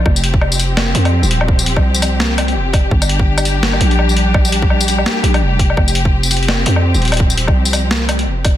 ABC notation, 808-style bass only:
X:1
M:4/4
L:1/16
Q:"Swing 16ths" 1/4=168
K:Gphr
V:1 name="808-style bass" clef=bass
F,,,8- F,,,2 F,,3 E,,,3- | E,,,3 C,,8- C,, F,,,4 | G,,,8- G,,,2 B,,,6- | B,,,8 z2 B,,,2 F,,,4 |
F,,,8- F,,,2 F,,3 E,,,3- | E,,,3 C,,8- C,, F,,,4 |]